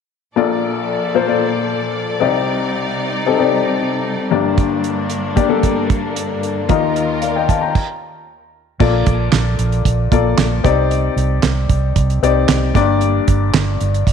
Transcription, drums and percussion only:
4.58 kick, closed hi-hat
4.84 closed hi-hat
5.10 closed hi-hat
5.37 kick, closed hi-hat
5.63 kick, closed hi-hat
5.90 kick, closed hi-hat
6.16 closed hi-hat
6.43 closed hi-hat
6.69 kick, closed hi-hat
6.96 closed hi-hat
7.22 closed hi-hat
7.49 kick, closed hi-hat
7.75 kick, crash
8.80 kick, crash
9.06 kick, closed hi-hat
9.32 snare, clap, closed hi-hat
9.59 closed hi-hat
9.72 closed hi-hat
9.85 kick, closed hi-hat
10.12 kick, closed hi-hat
10.38 snare, clap, closed hi-hat
10.65 kick, closed hi-hat
10.91 closed hi-hat
11.18 closed hi-hat
11.43 snare, clap, closed hi-hat
11.69 kick, closed hi-hat
11.96 kick, closed hi-hat
12.10 closed hi-hat
12.23 closed hi-hat
12.48 snare, clap, closed hi-hat
12.75 kick, snare, closed hi-hat
13.01 closed hi-hat
13.28 kick, closed hi-hat
13.54 snare, clap, closed hi-hat
13.81 closed hi-hat
13.94 closed hi-hat
14.07 kick, closed hi-hat

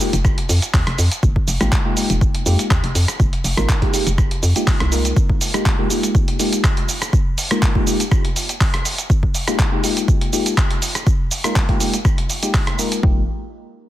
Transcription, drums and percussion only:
0.00 open hi-hat, cabasa
0.13 closed hi-hat, cabasa
0.25 kick, cross-stick, cabasa
0.38 closed hi-hat
0.49 open hi-hat, cabasa
0.62 closed hi-hat, cabasa
0.74 kick, clap, open hi-hat, cabasa
0.87 cross-stick, closed hi-hat
0.98 open hi-hat, cabasa
1.11 closed hi-hat, cabasa
1.23 kick, cabasa
1.36 kick
1.48 open hi-hat, cabasa
1.61 cross-stick, closed hi-hat, cabasa
1.72 kick, clap, cabasa
1.97 open hi-hat, cabasa
2.10 closed hi-hat, cabasa
2.21 kick, cabasa
2.35 closed hi-hat
2.46 open hi-hat, cabasa
2.59 closed hi-hat, cabasa
2.71 kick, cross-stick, clap, cabasa
2.84 closed hi-hat
2.95 open hi-hat, cabasa
3.08 cross-stick, closed hi-hat, cabasa
3.20 kick, cabasa
3.33 closed hi-hat
3.44 open hi-hat, cabasa
3.58 cross-stick, closed hi-hat, cabasa
3.69 kick, clap, cabasa
3.82 kick, closed hi-hat
3.94 open hi-hat, cabasa
4.07 closed hi-hat, cabasa
4.18 kick, cross-stick, cabasa
4.31 closed hi-hat
4.43 open hi-hat, cabasa
4.56 closed hi-hat, cabasa
4.67 kick, clap, open hi-hat, cabasa
4.80 cross-stick, closed hi-hat
4.92 open hi-hat, cabasa
5.05 closed hi-hat, cabasa
5.17 kick, cabasa
5.30 kick
5.41 open hi-hat, cabasa
5.54 cross-stick, closed hi-hat, cabasa
5.66 kick, clap, cabasa
5.90 open hi-hat, cabasa
6.03 closed hi-hat, cabasa
6.15 kick, cabasa
6.28 closed hi-hat
6.40 open hi-hat, cabasa
6.53 closed hi-hat, cabasa
6.64 kick, cross-stick, clap, cabasa
6.77 closed hi-hat
6.89 open hi-hat, cabasa
7.02 cross-stick, closed hi-hat, cabasa
7.13 kick, cabasa
7.38 open hi-hat, cabasa
7.51 cross-stick, closed hi-hat, cabasa
7.62 kick, clap, cabasa
7.75 kick
7.87 open hi-hat, cabasa
8.00 closed hi-hat, cabasa
8.12 kick, cross-stick, cabasa
8.25 closed hi-hat
8.36 open hi-hat, cabasa
8.49 closed hi-hat, cabasa
8.61 kick, clap, open hi-hat, cabasa
8.74 cross-stick, closed hi-hat
8.85 open hi-hat, cabasa
8.98 closed hi-hat, cabasa
9.10 kick, cabasa
9.23 kick
9.35 open hi-hat, cabasa
9.48 cross-stick, closed hi-hat, cabasa
9.59 kick, clap, cabasa
9.84 open hi-hat, cabasa
9.97 closed hi-hat, cabasa
10.08 kick, cabasa
10.21 closed hi-hat
10.33 open hi-hat, cabasa
10.46 closed hi-hat, cabasa
10.57 kick, cross-stick, clap, cabasa
10.71 closed hi-hat
10.82 open hi-hat, cabasa
10.95 cross-stick, closed hi-hat, cabasa
11.07 kick, cabasa
11.31 open hi-hat, cabasa
11.44 cross-stick, closed hi-hat, cabasa
11.56 kick, clap, cabasa
11.69 kick, closed hi-hat
11.80 open hi-hat, cabasa
11.93 closed hi-hat, cabasa
12.05 kick, cross-stick, cabasa
12.18 closed hi-hat
12.30 open hi-hat, cabasa
12.43 closed hi-hat, cabasa
12.54 kick, clap, open hi-hat, cabasa
12.67 cross-stick, closed hi-hat
12.79 open hi-hat, cabasa
12.92 closed hi-hat, cabasa
13.03 kick

